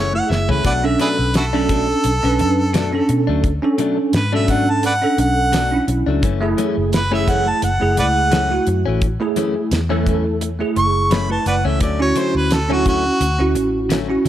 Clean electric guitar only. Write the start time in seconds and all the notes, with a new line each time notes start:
Already playing: F#2 E3 A3 C#4
0.14 muted clean electric guitar stroke
0.30 muted clean electric guitar stroke
0.49 E3 A3 C#4
0.64 B2 F#3 A3 D4
0.84 muted clean electric guitar stroke
0.99 B2 F#3 A3 D4
1.53 B2 F#3 A3 D4
1.69 B2 F#3 A3 D4
2.04 muted clean electric guitar stroke
2.23 muted clean electric guitar stroke
2.39 muted clean electric guitar stroke
2.73 B2 F#3 A3 D4
2.93 muted clean electric guitar stroke
3.09 muted clean electric guitar stroke
3.27 F#3 A3 D4
3.63 muted clean electric guitar stroke
3.78 B2 F#3 A3 D4
3.98 muted clean electric guitar stroke
4.33 B2 F#3 A3 D4
4.48 B2 F#3 A3 D4
4.68 muted clean electric guitar stroke
4.83 muted clean electric guitar stroke
5.02 muted clean electric guitar stroke
5.18 muted clean electric guitar stroke
5.52 B2 F#3 A3 D4
5.72 muted clean electric guitar stroke
5.88 muted clean electric guitar stroke
6.06 F#3 A3 D4
6.22 F#2 E3 A3 C#4
6.42 muted clean electric guitar stroke
6.57 F#2 E3 A3 C#4
6.77 muted clean electric guitar stroke
7.12 F#2 E3 A3 C#4
7.27 F#2 E3 A3 C#4
7.47 muted clean electric guitar stroke
7.62 muted clean electric guitar stroke
7.81 muted clean electric guitar stroke
7.97 muted clean electric guitar stroke
8.31 F#2 E3 A3 C#4
8.52 muted clean electric guitar stroke
8.67 muted clean electric guitar stroke
8.86 E3 A3 C#4
9.21 muted clean electric guitar stroke
9.36 F#2 E3 A3 C#4
9.56 muted clean electric guitar stroke
9.90 F#2 E3 A3 C#4
10.05 F#2 E3 A3 C#4
10.26 muted clean electric guitar stroke
10.41 muted clean electric guitar stroke
10.61 muted clean electric guitar stroke
10.76 muted clean electric guitar stroke
11.11 F#2 E3 A3 C#4
11.30 muted clean electric guitar stroke
11.46 muted clean electric guitar stroke
11.65 E3 A3 C#4
11.81 D3 F#3 A3 C#4
12.01 muted clean electric guitar stroke
12.15 D3 F#3 A3 C#4
12.35 muted clean electric guitar stroke
12.70 D3 F#3 A3 C#4
12.85 D3 F#3 A3 C#4
13.05 muted clean electric guitar stroke
13.21 muted clean electric guitar stroke
13.40 muted clean electric guitar stroke
13.55 muted clean electric guitar stroke
13.89 D3 F#3 A3 C#4
14.10 muted clean electric guitar stroke
14.25 muted clean electric guitar stroke